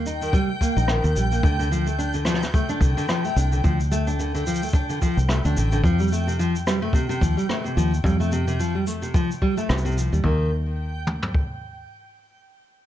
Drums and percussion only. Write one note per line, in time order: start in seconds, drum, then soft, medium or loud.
0.07 shaker medium
0.22 shaker soft
0.33 kick loud
0.33 shaker medium
0.61 kick medium
0.61 shaker loud
0.77 shaker soft
0.88 cross-stick medium
0.88 shaker medium
1.04 shaker soft
1.16 shaker loud
1.32 shaker medium
1.43 kick loud
1.43 shaker medium
1.60 shaker soft
1.72 shaker medium
1.87 shaker soft
1.99 shaker medium
2.14 shaker soft
2.25 cross-stick medium
2.25 shaker medium
2.34 cross-stick medium
2.42 cross-stick soft
2.42 shaker medium
2.54 kick loud
2.54 shaker medium
2.69 shaker soft
2.81 kick loud
2.81 shaker medium
2.98 shaker medium
3.09 cross-stick medium
3.09 shaker medium
3.25 shaker soft
3.37 shaker medium
3.52 shaker soft
3.64 kick loud
3.64 shaker medium
3.80 shaker soft
3.92 shaker medium
4.07 shaker medium
4.20 shaker medium
4.35 shaker soft
4.47 shaker medium
4.55 shaker medium
4.63 shaker medium
4.68 shaker soft
4.73 kick loud
4.73 shaker medium
4.90 shaker soft
5.02 kick medium
5.02 shaker medium
5.18 shaker soft
5.29 cross-stick medium
5.29 shaker medium
5.45 shaker soft
5.57 shaker loud
5.72 shaker soft
5.84 kick loud
5.84 shaker medium
5.99 shaker soft
6.02 shaker soft
6.08 shaker soft
6.12 shaker soft
6.12 shaker medium
6.17 shaker soft
6.29 shaker medium
6.40 shaker medium
6.56 shaker soft
6.67 cross-stick medium
6.67 shaker medium
6.93 kick loud
6.93 shaker medium
7.11 shaker soft
7.21 kick loud
7.21 shaker medium
7.39 shaker medium
7.49 cross-stick medium
7.49 shaker medium
7.66 shaker soft
7.78 shaker medium
7.94 shaker soft
8.04 kick loud
8.04 shaker medium
8.21 shaker soft
8.32 shaker medium
8.48 shaker soft
8.60 shaker medium
8.87 shaker medium
9.03 shaker medium
9.14 kick loud
9.14 shaker medium
9.31 shaker soft
9.42 kick medium
9.58 shaker soft
9.69 cross-stick medium
9.69 shaker soft
9.78 shaker soft
9.85 shaker soft
9.91 shaker soft
9.98 shaker loud
10.13 shaker soft
10.24 kick loud
11.07 mid tom medium
11.22 floor tom medium
11.34 kick medium